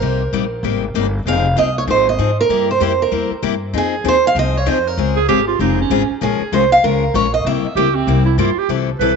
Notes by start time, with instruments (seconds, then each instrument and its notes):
Already playing: steel-string acoustic guitar A#4
0.01 upright bass C2, steel-string acoustic guitar C3 G3 A#3 D#4 G4
0.32 upright bass A#1, steel-string acoustic guitar C3 G3 A#3 D#4 G4
0.63 upright bass G#1, steel-string acoustic guitar C3 G3 A#3 D#4 G4
0.94 upright bass G1, steel-string acoustic guitar C3 G3 A#3 D#4 G4
1.25 upright bass F1, steel-string acoustic guitar F3 C4 D#4 G#4 F5
1.56 upright bass C2, steel-string acoustic guitar F3 C4 D#4 G#4 D#5
1.78 steel-string acoustic guitar C#5
1.87 upright bass G#1, steel-string acoustic guitar F3 C4 D#4 G#4 C5
2.09 steel-string acoustic guitar D#5
2.18 upright bass G#2, steel-string acoustic guitar F3 C4 D#4 G#4
2.41 steel-string acoustic guitar A#4
2.49 upright bass G2, steel-string acoustic guitar C3 G3 A#3 E4 G4
2.71 steel-string acoustic guitar C5
2.80 upright bass F2, steel-string acoustic guitar C3 G3 A#3 E4 G4 C5
3.02 steel-string acoustic guitar A#4
3.11 upright bass E2, steel-string acoustic guitar C3 G3 A#3 E4 G4
3.30 muted upright bass stroke
3.42 upright bass G2, steel-string acoustic guitar C3 G3 A#3 E4 G4
3.73 upright bass F2, steel-string acoustic guitar F3 C4 D#4 G#4
3.78 steel-string acoustic guitar G#4
4.04 upright bass D#2, steel-string acoustic guitar F3 C4 D#4 G#4
4.08 steel-string acoustic guitar C5
4.27 steel-string acoustic guitar F5
4.35 upright bass C2, steel-string acoustic guitar F3 C4 D#4 G#4
4.39 steel-string acoustic guitar D#5
4.57 steel-string acoustic guitar C#5
4.66 upright bass F2, steel-string acoustic guitar F3 C4 D#4 G#4 C5
4.87 steel-string acoustic guitar A#4
4.97 upright bass C#2, steel-string acoustic guitar C#3 G#3 C4 F4 G#4
5.16 clarinet G#4
5.28 upright bass G#1, steel-string acoustic guitar C#3 G#3 C4 F4 G#4, clarinet G4
5.47 clarinet F4
5.59 upright bass F1, steel-string acoustic guitar C#3 G#3 C4 F4 G#4, clarinet D#4
5.81 clarinet C#4
5.90 upright bass G#1, steel-string acoustic guitar C#3 G#3 C4 F4 G#4
6.09 muted upright bass stroke
6.21 upright bass A#1, steel-string acoustic guitar F3 G#3 C#4 F4 G#4 A#4
6.40 muted upright bass stroke
6.52 upright bass C2, steel-string acoustic guitar F3 G#3 C#4 F4 A#4 C5
6.72 steel-string acoustic guitar F5
6.84 upright bass C#2, steel-string acoustic guitar F3 G#3 C#4 F4 A#4
7.14 upright bass A#1, steel-string acoustic guitar F3 G#3 C#4 F4 A#4 C#5
7.34 steel-string acoustic guitar D#5
7.45 upright bass C2, steel-string acoustic guitar C3 G3 A#3 E4 G4 E5
7.63 muted upright bass stroke
7.75 upright bass C#2, steel-string acoustic guitar C3 G3 A#3 E4 G4, clarinet G4
7.95 clarinet C4
8.07 upright bass C2, steel-string acoustic guitar C3 G3 A#3 E4 G4
8.25 clarinet E4
8.38 upright bass G2, steel-string acoustic guitar C3 G3 A#3 E4 G4, clarinet F4
8.56 clarinet G4, muted upright bass stroke
8.69 upright bass C2, steel-string acoustic guitar E3 G3 C4 E4 A4
8.99 upright bass B1, steel-string acoustic guitar E3 G3 C4 E4 A4, clarinet B4